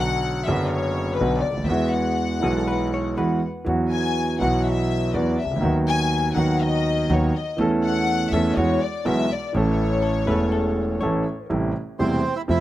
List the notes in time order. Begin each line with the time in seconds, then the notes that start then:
Already playing: B1 B2 D3 F#3 B3 F#4
0.00 F#5
0.45 F#1 F#2 D3 F#3 B3 E5
0.50 F#4
0.69 C#5
1.16 B4
1.20 B1 B2 D3 F#3 B3 F#4
1.40 D5
1.50 C#2
1.57 D2
1.64 D#2 E5
1.68 E2 E3 G#3 B3 F#4
1.92 F#5
2.40 B1 B2 E3 G#3 B3
2.44 F#4 G#4
2.57 A4
2.67 B4
2.94 C#5
3.17 E2 E3 G#3 B3 F#4 B4
3.65 E2 E3 F#3 B3
3.69 F#4
3.91 G#5
4.39 B1 B2 E3 F#3 B3 F#5
4.43 F#4
4.66 E5
5.14 E2 E3 F#3 B3 F#4 D5
5.40 C2 E5
5.45 C2
5.51 C#2
5.56 D2
5.60 D#2 D#3 F#3 B3
5.64 F#4
5.89 G#5
6.34 D#2 D#3 F#3 B3 F#5
6.39 F#4
6.63 D#5
7.09 D#2 D#3 F#3 B3 F#4 C#5
7.36 D#5
7.58 E2 E3 A3 C#4 A4
7.85 F#5
8.32 E2 E3 A3 C#4 A4 E5
8.56 E2 E3 G#3 B3 F#4 C#5
8.83 D5
9.05 B1 B2 E3 G#3 B3 F#4 E5
9.33 D5
9.53 A1 A2 E3 A3 C#4
9.57 A4 C#5
10.03 A4
10.26 E1 E2 E3 A3 C#4 A4 B4
10.52 A4
11.01 A1 A2 E3 A3 C#4 A4 C#5
11.49 A1 A2 C3 G3 A3 E4
11.99 E1 E2 C3 G3 A3 C4 E4 C5
12.36 E4 E5
12.48 F2 C3 F3 A3 E4 E5